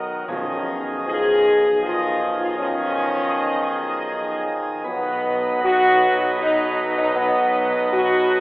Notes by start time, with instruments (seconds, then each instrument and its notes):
Already playing: tuba B1, pipe organ D#3 F#3 D#4 F#4, trombone section D#3 F#3, trumpet section A#4 D#5
0.28 tuba B1, timpani B2, pipe organ D#3 F3 D#4 G#4, trombone section D#3 F3, french horn section C#4, trumpet section G#4 D#5
1.07 trombone section D#3 F3, trumpet section G#4 D#5, french horn section G#4
1.82 trombone section D#3 F3, french horn section F4, trumpet section G#4 D#5
2.39 french horn section F4
2.58 trombone section D#3 F3, french horn section C#4, trumpet section G#4 D#5
4.84 tuba B1, pipe organ B2 F#3 D#4 B4, trombone section B2 F#3, french horn section B3, trumpet section B4 D#5
5.64 french horn section F#4
6.40 french horn section D#4
6.97 french horn section D#4
7.15 french horn section B3
7.93 french horn section F#4